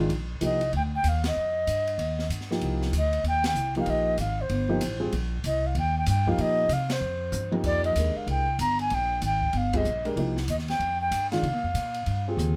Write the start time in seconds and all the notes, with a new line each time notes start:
0.09 A#1, ride
0.41 C2 F3 A#3 D#4 G4 D#5, hi-hat pedal, ride
0.61 ride
0.73 D2 G5, ride
0.95 G5
1.04 D#2, hi-hat pedal, ride
1.08 F5
1.24 D#5, snare, ride
1.36 F2
1.67 G2, hi-hat pedal, ride
1.87 ride
1.98 D#2, ride
2.19 snare
2.29 G2, hi-hat pedal, ride
2.40 snare
2.51 F3 A#3 D#4 G4, snare
2.61 C2, ride
2.82 snare
2.92 D2, hi-hat pedal, ride
2.98 D#5
3.13 ride
3.23 D#2, ride
3.28 G5
3.44 G5, snare, ride
3.55 C2, hi-hat pedal
3.75 F3 A#3 D#4 G4, ride
3.80 F5
3.86 A#1 D#5, ride
4.18 G#1 F5, hi-hat pedal, ride
4.41 C5
4.49 G1, ride
4.69 F3 A#3 D#4 G4
4.81 A1, hi-hat pedal, ride
5.00 G3 C4 F4 G#4
5.12 A#1, ride
5.44 C2 D#5, hi-hat pedal, ride
5.66 F5
5.75 D#2 G5, ride
5.98 G5
6.06 G2 G5, hi-hat pedal, ride
6.27 F3 A#3 D#4 G4 F5, kick
6.38 A#2 D#5, ride
6.69 C3, hi-hat pedal, ride
6.73 F5
6.90 C5, snare, ride
7.00 F2
7.32 G2, hi-hat pedal, high tom
7.51 F3 A#3 D#4 G4, high tom
7.64 F2 D5, kick, crash
7.84 D#5, ride
7.96 D#2 G#3 D4 G4 A#4, hi-hat pedal, ride
8.16 F5, muted upright bass stroke
8.27 C2 G5, ride
8.59 G1 A#5, hi-hat pedal, ride
8.79 G#5, ride
8.90 A#1, ride
8.94 G5
9.22 G#1, hi-hat pedal, ride
9.26 G5
9.42 kick
9.53 G1, ride
9.57 F5
9.73 G3 C4 F4 G#4 D#5, kick, ride
9.85 A#1, hi-hat pedal
10.05 G#3 D4 G4 A#4, ride
10.16 C2 F3 A#3 D#4 G4, ride
10.37 snare
10.48 D#2 D#5, hi-hat pedal, ride
10.58 snare
10.68 G5, snare, ride
10.79 F2, ride
11.01 G5
11.11 G2, hi-hat pedal, ride
11.31 D#3 G#3 D4 F4 F5, snare, ride
11.43 C3, ride
11.53 A#2
11.64 F2
11.74 A#2, hi-hat pedal, ride
11.94 ride
12.06 G2, ride
12.28 C4 F4 G4 G#4
12.37 D#2, hi-hat pedal, mid tom